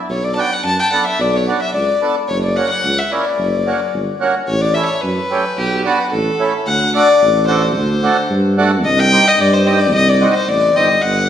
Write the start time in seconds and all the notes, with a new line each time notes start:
0.09 B1 C#5
0.23 D5
0.35 B3 D4 F#4 A5
0.39 G5
0.53 F#5
0.64 F#2 A5
0.79 G5 A5
0.85 G5
0.92 B3 D4 A4 F#5
1.07 E5
1.20 B1 D5
1.36 C#5
1.47 B3 D4 F#4 D5
1.62 E5
1.74 C#2 D5
2.01 B3 D4 A4
2.28 F#1 C#5
2.43 D5
2.56 A#3 C#4 F#4 F#5
2.71 F#5
2.84 C#2
2.98 E5
3.12 A#3 C#4 E4 D5
3.38 F#1
3.67 A#3 C#4 F#4
3.93 G1
4.20 A#3 C#4 F#4
4.48 A1 C#5
4.61 D5
4.74 A3 C#4 E4 E5
4.86 C#5
5.01 F#2 B4
5.31 A3 C#4 G4
5.57 B1 G4
5.84 B3 D4 F#4
6.12 A1 A4
6.39 A3 C#4 E4
6.67 D2 F#5
6.94 A3 D4 F#4 D5
7.22 A1
7.48 A3 D4 F#4 C5
7.75 D2 C5
8.03 A3 D4 F#4
8.30 G2
8.58 A3 D4 F#4
8.85 C2 D#5
8.99 G5
9.12 C4 D#4 G4
9.27 D#5
9.39 G2 D5
9.53 C5
9.66 C4 D#4 G4 D#5
9.80 D5
9.94 C2 D#5
10.08 D5
10.21 C4 D#4 F#4
10.35 C5
10.48 A1 D5
10.75 G1 C4 D#4 G4 D#5
11.02 G1 F#5